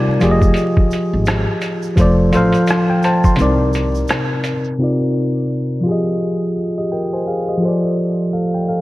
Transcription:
Already playing: tine electric piano C3 G3 D#4 F4 A#4 D5
0.07 muted upright bass stroke
0.19 upright bass F1, tine electric piano F3 F4 G4, closed hi-hat, shaker
0.23 tine electric piano G#4 D5
0.31 tine electric piano D#5
0.42 kick, shaker
0.54 closed hi-hat, shaker
0.77 kick
0.91 closed hi-hat, shaker
1.13 upright bass G#1
1.26 cross-stick, closed hi-hat, shaker
1.61 closed hi-hat, shaker
1.82 shaker
1.96 upright bass F1, tine electric piano F3 F4 A4, kick, closed hi-hat, shaker
2.00 tine electric piano C5 D5
2.31 upright bass A1, tine electric piano F3 F4 A4 C5, closed hi-hat, shaker
2.37 tine electric piano F5
2.52 closed hi-hat, shaker
2.67 cross-stick, closed hi-hat, shaker
2.90 tine electric piano G5
3.03 tine electric piano C5 A5, closed hi-hat, shaker
3.24 tine electric piano C6, kick, shaker
3.36 tine electric piano C3 C4 D#4, closed hi-hat, shaker
3.40 upright bass C2, tine electric piano A#4 D5
3.73 closed hi-hat, shaker
3.95 shaker
4.08 cross-stick, closed hi-hat, shaker
4.44 closed hi-hat, shaker
4.64 shaker
4.78 tine electric piano C3 C4 D#4 F4
4.82 tine electric piano A#4 D5
5.81 tine electric piano F3 F4
5.86 tine electric piano G4 G#4
5.92 tine electric piano D#5
6.78 tine electric piano G4 D#5
6.92 tine electric piano A#4 G5
7.13 tine electric piano C5 G#5
7.27 tine electric piano G#4 F5
7.49 tine electric piano G4 D#5
7.57 tine electric piano F3 F4
7.63 tine electric piano A4 C5
7.68 tine electric piano D5
8.33 tine electric piano A4 F5
8.54 tine electric piano G5
8.69 tine electric piano A4 F5

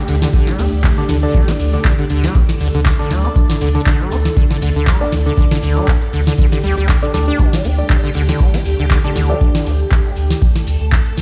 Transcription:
Already playing: string machine A3 D4 G4
0.08 sub bass D2, acid bass D3, open hi-hat, maracas
0.22 acid bass D3, snare, closed hi-hat, maracas
0.33 acid bass D3, kick, closed hi-hat, maracas
0.47 acid bass G3, snare, closed hi-hat, maracas
0.59 sub bass D2, acid bass D4, open hi-hat, maracas
0.72 sub bass D2, closed hi-hat, maracas
0.84 acid bass D3, kick, clap, closed hi-hat, maracas
0.97 acid bass D3, tine electric piano D4 A4 D5, closed hi-hat, maracas
1.08 sub bass D2, acid bass D3, snare, open hi-hat, maracas
1.23 acid bass D3, tine electric piano D4 A4 D5, closed hi-hat, maracas
1.34 acid bass G3, kick, closed hi-hat, maracas
1.48 acid bass D4, snare, closed hi-hat, maracas
1.59 sub bass D2, open hi-hat, maracas
1.73 acid bass D3, tine electric piano D4 A4 D5, closed hi-hat, maracas
1.85 acid bass D3, kick, clap, closed hi-hat, maracas
1.98 acid bass D3, closed hi-hat, maracas
2.10 sub bass D2, acid bass D3, open hi-hat, maracas
2.23 acid bass G3, snare, closed hi-hat, maracas
2.35 acid bass D4, string machine A4, kick, closed hi-hat, maracas
2.49 snare, closed hi-hat, maracas
2.60 sub bass D2, acid bass D3, open hi-hat, maracas
2.74 sub bass D2, acid bass D3, closed hi-hat, maracas
2.85 acid bass D3, kick, clap, closed hi-hat, maracas
2.99 acid bass D3, tine electric piano D4 A4 D5, closed hi-hat, maracas
3.10 sub bass D2, acid bass G3, snare, open hi-hat, maracas
3.25 tine electric piano D4 A4 D5, acid bass D4, closed hi-hat, maracas
3.36 kick, closed hi-hat, maracas
3.50 acid bass D3, snare, closed hi-hat, maracas
3.61 sub bass D2, acid bass D3, open hi-hat, maracas
3.75 acid bass D3, tine electric piano D4 A4 D5, maracas
3.86 acid bass D3, kick, clap, closed hi-hat, maracas
4.00 acid bass G3, closed hi-hat, maracas
4.11 sub bass D2, acid bass D4, open hi-hat, maracas
4.25 snare, maracas
4.37 acid bass D3, kick, closed hi-hat, maracas
4.50 acid bass D3, snare, closed hi-hat, maracas
4.62 sub bass D2, acid bass D3, open hi-hat, maracas
4.76 sub bass D2, acid bass D3, closed hi-hat, maracas
4.87 acid bass G3, kick, clap, closed hi-hat, maracas
5.01 tine electric piano D4 A4 D5, acid bass D4, closed hi-hat, maracas
5.12 sub bass D2, snare, open hi-hat, maracas
5.26 acid bass D3, tine electric piano D4 A4 D5, closed hi-hat, maracas
5.38 acid bass D3, kick, closed hi-hat, maracas
5.51 acid bass D3, snare, closed hi-hat, maracas
5.63 sub bass D2, acid bass D3, open hi-hat, maracas
5.77 acid bass G3, tine electric piano D4 A4 D5, closed hi-hat, maracas
5.88 acid bass D4, kick, clap, closed hi-hat, maracas
6.02 closed hi-hat, maracas
6.13 sub bass D2, acid bass D3, open hi-hat, maracas
6.27 acid bass D3, snare, closed hi-hat, maracas
6.38 acid bass D3, string machine G4, kick, closed hi-hat, maracas
6.52 acid bass D3, snare, closed hi-hat, maracas
6.63 sub bass D2, acid bass G3, open hi-hat, maracas
6.77 sub bass D2, acid bass G3, closed hi-hat, maracas
6.89 acid bass D3, kick, clap, closed hi-hat, maracas
7.02 acid bass D3, tine electric piano D4 A4 D5, closed hi-hat, maracas
7.14 sub bass D2, acid bass G3, tine electric piano D4 A4 D5, snare, open hi-hat, maracas
7.28 acid bass D4, closed hi-hat, maracas
7.39 acid bass D3, kick, closed hi-hat, maracas
7.53 acid bass G3, snare, closed hi-hat, maracas
7.64 sub bass D2, acid bass D4, open hi-hat, maracas
7.78 tine electric piano D4 A4 D5, closed hi-hat, maracas
7.89 acid bass D3, kick, clap, closed hi-hat, maracas
8.04 acid bass D3, closed hi-hat, maracas
8.14 sub bass D2, acid bass D3, open hi-hat, maracas
8.29 acid bass D3, snare, closed hi-hat, maracas
8.40 acid bass G3, kick, closed hi-hat, maracas
8.54 acid bass D4, snare, closed hi-hat, maracas
8.65 sub bass D2, open hi-hat, maracas
8.79 sub bass D2, acid bass D3, closed hi-hat, maracas
8.90 acid bass D3, kick, clap, closed hi-hat, maracas
9.04 acid bass D3, tine electric piano D4 A4 D5, closed hi-hat, maracas
9.16 sub bass D2, acid bass D3, snare, open hi-hat, maracas
9.30 acid bass G3, tine electric piano D4 A4 D5, closed hi-hat, maracas
9.41 kick, closed hi-hat, maracas
9.55 snare, closed hi-hat, maracas
9.66 sub bass D2, open hi-hat, maracas
9.80 closed hi-hat, maracas
9.91 kick, clap, closed hi-hat, maracas
10.05 closed hi-hat, maracas
10.16 sub bass D2, open hi-hat, maracas
10.30 snare, closed hi-hat, maracas
10.42 string machine A4, kick, closed hi-hat, maracas
10.56 snare, closed hi-hat, maracas
10.67 sub bass D2, open hi-hat, maracas
10.81 sub bass D2, closed hi-hat, maracas
10.92 kick, clap, closed hi-hat, maracas
11.05 closed hi-hat, maracas
11.17 sub bass D2, snare, open hi-hat, maracas

